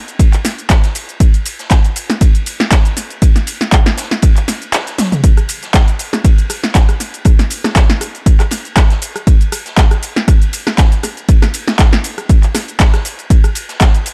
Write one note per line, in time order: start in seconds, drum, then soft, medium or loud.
0.08 closed hi-hat soft
0.08 shaker soft
0.19 kick loud
0.19 closed hi-hat medium
0.19 ride medium
0.19 shaker soft
0.33 clap soft
0.33 closed hi-hat soft
0.33 shaker soft
0.44 snare soft
0.44 snare medium
0.44 open hi-hat loud
0.44 ride medium
0.44 shaker medium
0.58 closed hi-hat soft
0.58 shaker soft
0.70 kick loud
0.70 snare loud
0.70 clap loud
0.70 closed hi-hat medium
0.70 ride medium
0.70 shaker soft
0.83 snare soft
0.83 closed hi-hat soft
0.83 shaker soft
0.95 open hi-hat loud
0.95 ride medium
0.95 shaker medium
1.09 closed hi-hat soft
1.09 shaker soft
1.20 kick loud
1.20 closed hi-hat medium
1.20 ride medium
1.20 shaker soft
1.34 closed hi-hat soft
1.34 shaker soft
1.45 open hi-hat loud
1.45 ride medium
1.45 shaker medium
1.59 snare medium
1.59 closed hi-hat soft
1.59 shaker soft
1.70 kick loud
1.70 snare loud
1.70 clap loud
1.70 closed hi-hat loud
1.70 ride medium
1.70 shaker soft
1.84 closed hi-hat soft
1.84 shaker soft
1.96 open hi-hat loud
1.96 ride medium
1.96 shaker medium
2.10 snare medium
2.10 closed hi-hat soft
2.10 shaker soft
2.21 kick loud
2.21 closed hi-hat medium
2.21 ride medium
2.21 shaker soft
2.35 closed hi-hat soft
2.35 shaker soft
2.46 open hi-hat loud
2.46 ride medium
2.46 shaker medium
2.60 snare soft
2.60 snare medium
2.60 closed hi-hat soft
2.60 shaker soft
2.72 kick loud
2.72 snare loud
2.72 clap loud
2.72 closed hi-hat loud
2.72 ride loud
2.72 shaker soft
2.85 closed hi-hat soft
2.85 shaker soft
2.97 snare soft
2.97 open hi-hat loud
2.97 ride medium
2.97 shaker medium
3.10 closed hi-hat soft
3.10 shaker soft
3.22 kick loud
3.22 closed hi-hat loud
3.22 ride medium
3.22 shaker soft
3.36 snare medium
3.36 closed hi-hat soft
3.36 shaker soft
3.47 open hi-hat loud
3.47 ride medium
3.47 shaker medium
3.61 snare medium
3.61 closed hi-hat soft
3.61 shaker soft
3.72 kick loud
3.72 clap loud
3.72 closed hi-hat loud
3.72 ride medium
3.72 shaker soft
3.86 snare medium
3.86 snare soft
3.86 closed hi-hat soft
3.86 shaker soft
3.97 snare loud
3.97 open hi-hat loud
3.97 ride medium
3.97 shaker medium
4.11 snare medium
4.11 closed hi-hat soft
4.11 shaker soft
4.22 kick loud
4.22 closed hi-hat loud
4.22 ride loud
4.22 shaker soft
4.37 clap soft
4.37 closed hi-hat soft
4.37 shaker soft
4.48 snare medium
4.48 snare soft
4.48 open hi-hat loud
4.48 ride medium
4.48 shaker medium
4.62 closed hi-hat soft
4.62 shaker soft
4.73 snare loud
4.73 clap loud
4.73 closed hi-hat loud
4.73 ride medium
4.73 shaker soft
4.87 snare soft
4.87 closed hi-hat soft
4.87 shaker soft
4.98 snare loud
4.98 open hi-hat loud
4.98 high tom medium
4.98 ride medium
4.98 shaker medium
5.12 closed hi-hat soft
5.12 mid tom medium
5.12 shaker soft
5.24 kick loud
5.24 closed hi-hat loud
5.24 ride medium
5.24 shaker soft
5.37 cross-stick medium
5.37 closed hi-hat soft
5.37 shaker soft
5.49 open hi-hat loud
5.49 ride medium
5.49 shaker medium
5.63 snare medium
5.63 closed hi-hat soft
5.63 shaker soft
5.74 kick loud
5.74 cross-stick medium
5.74 snare loud
5.74 clap loud
5.74 closed hi-hat medium
5.74 ride medium
5.74 shaker soft
5.88 closed hi-hat soft
5.88 shaker soft
5.99 open hi-hat loud
5.99 ride medium
5.99 shaker medium
6.13 cross-stick medium
6.13 snare medium
6.13 closed hi-hat soft
6.13 shaker soft
6.24 kick loud
6.24 closed hi-hat loud
6.24 ride medium
6.24 shaker soft
6.38 closed hi-hat soft
6.38 shaker soft
6.50 cross-stick medium
6.50 open hi-hat loud
6.50 ride medium
6.50 shaker medium
6.63 snare soft
6.63 snare medium
6.63 closed hi-hat soft
6.63 shaker soft
6.74 kick loud
6.74 snare loud
6.74 clap loud
6.74 closed hi-hat loud
6.74 ride medium
6.74 shaker soft
6.89 cross-stick medium
6.89 closed hi-hat soft
6.89 shaker soft
7.00 snare soft
7.00 open hi-hat loud
7.00 ride medium
7.00 shaker medium
7.14 closed hi-hat soft
7.14 shaker soft
7.25 kick loud
7.25 cross-stick medium
7.25 closed hi-hat medium
7.25 ride medium
7.25 shaker soft
7.39 snare medium
7.39 closed hi-hat soft
7.39 shaker soft
7.50 open hi-hat loud
7.50 ride medium
7.50 shaker medium
7.64 cross-stick medium
7.64 snare medium
7.64 closed hi-hat soft
7.64 shaker soft
7.75 kick loud
7.75 snare loud
7.75 clap loud
7.75 closed hi-hat medium
7.75 ride medium
7.75 shaker soft
7.90 snare medium
7.90 closed hi-hat soft
7.90 shaker soft
8.01 cross-stick medium
8.01 open hi-hat loud
8.01 ride medium
8.01 shaker medium
8.15 closed hi-hat soft
8.15 shaker soft
8.26 kick loud
8.26 closed hi-hat loud
8.26 ride medium
8.26 shaker soft
8.40 cross-stick medium
8.40 clap soft
8.40 closed hi-hat soft
8.40 shaker soft
8.51 snare medium
8.51 snare soft
8.51 open hi-hat loud
8.51 ride medium
8.51 shaker medium
8.65 closed hi-hat soft
8.65 shaker soft
8.77 kick loud
8.77 cross-stick medium
8.77 snare loud
8.77 clap loud
8.77 closed hi-hat loud
8.77 ride medium
8.77 shaker soft
8.90 snare soft
8.90 closed hi-hat soft
8.90 shaker soft
9.02 open hi-hat loud
9.02 ride medium
9.02 shaker medium
9.16 cross-stick medium
9.16 closed hi-hat soft
9.16 shaker soft
9.27 kick loud
9.27 closed hi-hat medium
9.27 ride medium
9.27 shaker soft
9.41 closed hi-hat soft
9.41 shaker soft
9.52 cross-stick medium
9.52 open hi-hat loud
9.52 ride medium
9.52 shaker medium
9.66 snare medium
9.66 closed hi-hat soft
9.66 shaker soft
9.77 kick loud
9.77 snare loud
9.77 clap loud
9.77 closed hi-hat medium
9.77 ride medium
9.77 shaker soft
9.91 cross-stick medium
9.91 closed hi-hat soft
9.91 shaker soft
10.02 open hi-hat loud
10.02 ride medium
10.02 shaker medium
10.16 snare medium
10.16 closed hi-hat soft
10.16 shaker soft
10.28 kick loud
10.28 cross-stick medium
10.28 closed hi-hat medium
10.28 ride medium
10.28 shaker soft
10.42 closed hi-hat soft
10.42 shaker soft
10.53 open hi-hat loud
10.53 ride medium
10.53 shaker medium
10.67 cross-stick medium
10.67 snare medium
10.67 snare soft
10.67 closed hi-hat soft
10.67 shaker soft
10.78 kick loud
10.78 snare loud
10.78 clap loud
10.78 closed hi-hat medium
10.78 ride medium
10.78 shaker soft
10.92 closed hi-hat soft
10.92 shaker soft
11.03 cross-stick medium
11.03 snare soft
11.03 open hi-hat loud
11.03 ride medium
11.03 shaker medium
11.17 closed hi-hat soft
11.17 shaker soft
11.28 kick loud
11.28 closed hi-hat medium
11.28 ride medium
11.28 shaker soft
11.42 cross-stick medium
11.42 snare medium
11.42 closed hi-hat soft
11.42 shaker soft
11.54 open hi-hat loud
11.54 ride medium
11.54 shaker medium
11.68 snare medium
11.68 closed hi-hat soft
11.68 shaker soft
11.79 kick loud
11.79 cross-stick medium
11.79 snare loud
11.79 clap loud
11.79 closed hi-hat medium
11.79 ride medium
11.79 shaker soft
11.93 snare medium
11.93 closed hi-hat soft
11.93 shaker soft
12.04 open hi-hat loud
12.04 ride medium
12.04 shaker medium
12.18 cross-stick medium
12.18 closed hi-hat soft
12.18 shaker soft
12.29 kick loud
12.29 closed hi-hat medium
12.29 ride medium
12.29 shaker soft
12.43 clap soft
12.43 closed hi-hat soft
12.43 shaker soft
12.54 cross-stick medium
12.54 snare medium
12.54 snare soft
12.54 open hi-hat loud
12.54 ride medium
12.54 shaker medium
12.68 closed hi-hat soft
12.68 shaker soft
12.80 kick loud
12.80 snare loud
12.80 clap loud
12.80 closed hi-hat medium
12.80 ride medium
12.80 shaker soft
12.94 cross-stick medium
12.94 snare medium
12.94 closed hi-hat soft
12.94 shaker soft
13.05 open hi-hat loud
13.05 ride medium
13.05 shaker medium
13.19 closed hi-hat soft
13.19 shaker soft
13.30 kick loud
13.30 closed hi-hat medium
13.30 ride medium
13.30 shaker soft
13.44 cross-stick medium
13.44 closed hi-hat soft
13.44 shaker soft
13.55 open hi-hat loud
13.55 ride medium
13.55 shaker medium
13.69 snare medium
13.69 closed hi-hat soft
13.69 shaker soft
13.80 kick loud
13.80 cross-stick medium
13.80 snare loud
13.80 clap loud
13.80 closed hi-hat medium
13.80 ride medium
13.80 shaker soft
13.95 closed hi-hat soft
13.95 shaker soft
14.06 open hi-hat loud
14.06 ride medium
14.06 shaker medium